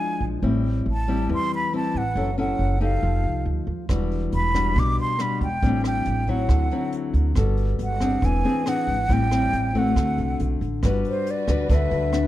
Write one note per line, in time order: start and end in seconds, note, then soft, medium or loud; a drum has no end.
0.00 0.40 F3 medium
0.00 0.39 G#3 soft
0.00 0.39 D4 medium
0.00 0.40 E4 medium
0.00 0.23 G#5 medium
0.20 0.41 A#1 medium
0.42 0.83 A1 medium
0.42 1.27 A2 soft
0.42 0.86 G3 soft
0.42 0.86 C4 soft
0.42 0.86 E4 medium
0.86 1.26 A1 medium
0.91 1.29 A5 medium
1.08 1.70 G3 medium
1.08 1.70 C4 soft
1.08 1.70 E4 medium
1.29 1.50 E2 medium
1.29 2.14 E3 soft
1.34 1.52 C6 medium
1.55 1.73 B5 medium
1.73 2.02 G3 soft
1.73 2.02 C4 medium
1.73 2.02 E4 medium
1.73 1.99 A5 medium
1.94 2.14 A1 medium
1.94 2.39 F#5 medium
2.15 2.56 F#1 medium
2.15 3.01 F#3 soft
2.15 2.29 C#4 soft
2.15 2.29 E4 soft
2.15 2.29 A4 medium
2.38 2.78 C#4 medium
2.38 2.78 E4 medium
2.38 2.78 A4 medium
2.38 2.79 F#5 medium
2.59 2.99 F#1 medium
2.81 3.64 D#4 medium
2.81 3.64 G4 medium
2.81 3.64 A4 medium
2.81 3.43 F5 medium
3.03 3.23 F1 medium
3.03 3.87 F3 medium
3.24 3.43 C2 medium
3.45 3.65 D2 medium
3.67 3.87 D#2 medium
3.89 4.29 E1 medium
3.89 4.74 E3 soft
3.89 4.51 G3 soft
3.89 4.51 D4 soft
3.89 4.51 F#4 soft
3.89 kick medium
3.89 cross-stick medium
3.89 closed hi-hat soft
4.11 closed hi-hat soft
4.32 4.73 E1 medium
4.32 4.81 B5 medium
4.32 closed hi-hat soft
4.54 5.16 G3 soft
4.54 5.16 D4 soft
4.54 5.16 F#4 soft
4.54 kick soft
4.54 cross-stick soft
4.54 closed hi-hat soft
4.76 4.96 B1 medium
4.76 5.61 B2 soft
4.76 4.99 D6 medium
4.76 kick medium
4.76 closed hi-hat soft
4.98 5.23 C6 medium
4.98 closed hi-hat soft
5.19 5.47 G3 soft
5.19 5.47 D4 medium
5.19 5.47 F#4 medium
5.19 5.42 B5 medium
5.19 cross-stick soft
5.19 closed hi-hat soft
5.41 5.61 E1 medium
5.41 5.82 G5 medium
5.41 kick soft
5.41 closed hi-hat soft
5.62 6.03 A1 medium
5.62 6.47 A2 soft
5.62 6.24 G3 soft
5.62 6.24 C4 soft
5.62 6.24 D4 soft
5.62 kick soft
5.62 closed hi-hat soft
5.84 6.32 G5 medium
5.84 cross-stick medium
5.84 closed hi-hat soft
6.05 6.46 A1 medium
6.05 closed hi-hat soft
6.27 6.67 F#3 soft
6.27 6.68 C4 medium
6.27 6.68 E4 medium
6.27 6.94 F#5 medium
6.27 kick soft
6.27 closed hi-hat soft
6.49 6.69 D2 medium
6.49 7.34 D3 soft
6.49 kick soft
6.49 cross-stick medium
6.49 closed hi-hat soft
6.71 7.33 F#3 medium
6.71 7.33 C4 medium
6.71 7.33 E4 medium
6.71 closed hi-hat soft
6.92 closed hi-hat soft
7.13 7.34 D2 medium
7.13 kick soft
7.13 closed hi-hat soft
7.35 7.76 G1 medium
7.35 8.21 G3 soft
7.35 7.98 B3 soft
7.35 7.98 F#4 soft
7.35 7.98 A4 soft
7.35 kick medium
7.35 cross-stick medium
7.35 closed hi-hat soft
7.57 closed hi-hat soft
7.79 8.19 G1 medium
7.79 8.27 F#5 medium
7.79 closed hi-hat soft
8.00 8.41 C4 medium
8.00 8.41 D4 medium
8.00 8.41 G#4 medium
8.00 kick soft
8.00 cross-stick soft
8.00 closed hi-hat soft
8.22 8.42 E1 medium
8.22 9.07 E3 medium
8.22 8.70 G#5 medium
8.22 kick medium
8.22 closed hi-hat soft
8.44 8.63 C4 medium
8.44 8.63 D4 medium
8.44 8.63 G#4 medium
8.44 closed hi-hat soft
8.66 8.95 C4 medium
8.66 8.95 D4 soft
8.66 8.96 G#4 medium
8.66 9.14 F#5 medium
8.66 cross-stick medium
8.66 closed hi-hat soft
8.87 9.08 G#1 medium
8.87 kick soft
8.87 closed hi-hat soft
9.09 9.50 A1 medium
9.09 9.94 A2 soft
9.09 9.28 G3 soft
9.09 9.28 C4 medium
9.09 9.28 E4 soft
9.09 9.80 G5 loud
9.09 kick medium
9.09 closed hi-hat soft
9.31 9.71 G3 medium
9.31 9.71 C4 medium
9.31 9.71 E4 medium
9.31 cross-stick soft
9.31 closed hi-hat soft
9.53 9.93 A1 medium
9.53 closed hi-hat soft
9.75 10.58 A3 medium
9.75 10.58 C4 soft
9.75 10.58 F#4 medium
9.75 10.41 F#5 medium
9.75 kick soft
9.75 closed hi-hat soft
9.96 10.16 D2 medium
9.96 10.81 D3 soft
9.96 kick medium
9.96 cross-stick medium
9.96 closed hi-hat soft
10.18 10.37 C2 medium
10.18 closed hi-hat soft
10.40 10.59 B1 medium
10.40 closed hi-hat soft
10.61 10.80 A1 medium
10.61 kick soft
10.61 closed hi-hat soft
10.83 11.03 G1 medium
10.83 11.68 G3 soft
10.83 12.27 G3 medium
10.83 11.45 D4 soft
10.83 12.27 F#4 medium
10.83 11.45 F#4 medium
10.83 12.27 B4 medium
10.83 11.45 B4 soft
10.83 kick medium
10.83 cross-stick medium
10.83 closed hi-hat soft
11.04 11.32 C5 medium
11.04 closed hi-hat soft
11.26 closed hi-hat soft
11.31 11.76 D5 medium
11.48 11.68 D2 medium
11.48 11.66 D4 medium
11.48 11.66 F#4 medium
11.48 11.67 B4 medium
11.48 kick soft
11.48 cross-stick medium
11.48 closed hi-hat soft
11.69 11.89 D2 medium
11.69 12.27 D3 medium
11.69 12.09 D4 medium
11.69 12.10 F#4 medium
11.69 12.10 B4 medium
11.69 kick medium
11.69 closed hi-hat soft
11.74 12.27 E5 medium
11.91 12.27 D2 medium
11.91 closed hi-hat soft
12.13 12.27 D4 medium
12.13 12.27 F#4 medium
12.13 12.27 B4 medium
12.13 cross-stick medium
12.13 closed hi-hat soft